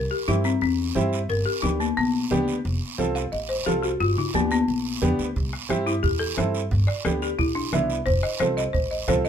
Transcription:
Already playing: A#4
0.11 G4
0.28 G2 C4 D#4 E4 G4, high conga, short guiro
0.44 C4, short guiro
0.61 E2 C4, high conga, long guiro
0.95 G2 C4 E4 G4, high conga, short guiro
1.13 short guiro
1.29 G1 A#4, high conga, long guiro
1.46 G4
1.62 D2 B3 D4 D#4 G4, high conga, short guiro
1.80 A#3, short guiro
1.97 B1 B3, high conga, long guiro
2.31 D2 B3 D4 G4, high conga, low conga, short guiro
2.48 short guiro
2.65 F1, high conga, long guiro
2.98 C2 C4 F4 A4, high conga, short guiro
3.15 F5, short guiro
3.32 A1 D#5, high conga, long guiro
3.49 C5
3.66 C2 C4 F4 G4 A4, high conga, short guiro
3.83 F#4, short guiro
4.00 G1 F4, high conga, long guiro
4.17 D#4, low conga
4.34 D2 A#3 B3 D4 G4, high conga, short guiro
4.51 B3, short guiro
4.68 B1, high conga, long guiro
5.02 E2 B3 D4 G4, high conga, low conga, short guiro
5.19 D2, short guiro
5.36 C2, bombo low, high conga, long guiro
5.53 bombo rim
5.69 G2 C4 E4 G4, bombo rim, high conga, short guiro
5.87 E4, short guiro
6.03 E2 G4, bombo low, high conga, long guiro
6.19 A4
6.37 G2 C4 E4 A4, bombo rim, high conga, short guiro
6.54 short guiro
6.71 G1, bombo low, high conga, long guiro
6.87 D5, bombo rim
7.05 D2 B3 D4 G4 A4, bombo rim, high conga, short guiro
7.22 G4, short guiro
7.39 B1 E4, bombo low, high conga, long guiro
7.55 D4
7.72 C2 B3 D4 E4, bombo rim, high conga, low conga, short guiro
7.90 short guiro
8.06 F1 C5, bombo low, high conga, long guiro
8.23 D#5, bombo rim
8.40 C2 C4 F4 A4 C5, bombo rim, high conga, short guiro
8.57 D#5, short guiro
8.73 A1 C5, bombo low, high conga, long guiro
8.91 D#5
9.08 C2 C4 F4 A4 C5, bombo low, bombo rim, high conga, short guiro
9.25 D#5, short guiro

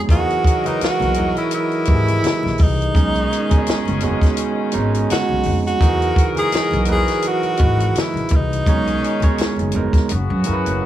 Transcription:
Already playing: B2 G#3 D#4 C#5 D5 D#5
0.08 E2 E3 F#3 D#4 F#4 G#4 A#4 D#5, kick, closed hi-hat, low conga
0.30 closed hi-hat
0.44 kick, closed hi-hat
0.64 E3 D#4 F#4 B4, closed hi-hat, high conga
0.81 F#4, muted upright bass stroke, snare, closed hi-hat, muted conga
1.00 B1, closed hi-hat, high conga
1.14 E3 F#4 A#4 D#5, closed hi-hat, low conga
1.36 E4, closed hi-hat
1.51 E4, closed hi-hat
1.71 closed hi-hat
1.85 G#1 E3 F#4 G4 D#5, kick, closed hi-hat
1.95 G#4
2.08 closed hi-hat
2.24 snare, closed hi-hat, muted conga, high conga
2.43 A#1, snare, high conga
2.58 C2, kick, open hi-hat, high conga, low conga
2.62 D#4
2.82 closed hi-hat
2.94 B1 B2 D#3 G#3 C#4 D#4 G#4, kick, closed hi-hat, low conga
3.14 closed hi-hat, muted conga
3.33 closed hi-hat
3.49 B2 G#3 C#4 D#4, kick, closed hi-hat, high conga
3.67 muted upright bass stroke, snare, closed hi-hat, muted conga
3.85 F#1, closed hi-hat, high conga
4.00 B2 G#3 C#4 F#4, closed hi-hat, low conga
4.22 kick, snare, closed hi-hat
4.37 closed hi-hat
4.72 G#1 B2 G#3 C#4 D#4, closed hi-hat
4.94 closed hi-hat
5.10 F#4, snare, closed hi-hat, muted conga, high conga
5.29 B1, high conga
5.43 F2, open hi-hat, high conga, low conga
5.67 F#4, closed hi-hat
5.81 E2 E3 F#3 D#4 F#4 G#4 A#4 D#5, kick, closed hi-hat, muted conga, low conga
6.02 closed hi-hat
6.16 kick, closed hi-hat
6.35 E3 D#4 F#4 G#4, closed hi-hat, high conga
6.39 G#4
6.52 muted upright bass stroke, snare, closed hi-hat, muted conga
6.71 B1, closed hi-hat, high conga
6.85 E3 D#4 F#4 B4, closed hi-hat, low conga
6.92 G#4
7.08 snare, closed hi-hat
7.22 closed hi-hat, muted conga
7.27 F#4
7.43 closed hi-hat, muted conga
7.57 G#1 E3 F#4 B4 D#5, kick, closed hi-hat
7.80 closed hi-hat
7.95 snare, closed hi-hat, muted conga, high conga
8.00 E4
8.14 A#1, closed hi-hat, high conga
8.29 C2, kick, closed hi-hat, high conga, low conga
8.35 D#4
8.53 closed hi-hat
8.66 B1 B2 D#3 G#3 C#4 D#4 G#4 C#5, kick, closed hi-hat, muted conga, low conga
8.85 closed hi-hat, muted conga
9.04 closed hi-hat
9.20 B2 G#3 D#4 C#5, kick, closed hi-hat, high conga
9.38 muted upright bass stroke, snare, closed hi-hat, muted conga
9.56 F#1, closed hi-hat, high conga
9.72 B2 G#3, closed hi-hat, low conga
9.76 D#4 A#4
9.93 kick, snare, closed hi-hat
10.09 F#1 C#3 B3 F#4, closed hi-hat
10.30 F#2
10.44 F#3 C#4 E4 A#4, closed hi-hat
10.48 F#2
10.54 B4
10.66 F#1, closed hi-hat
10.82 E5

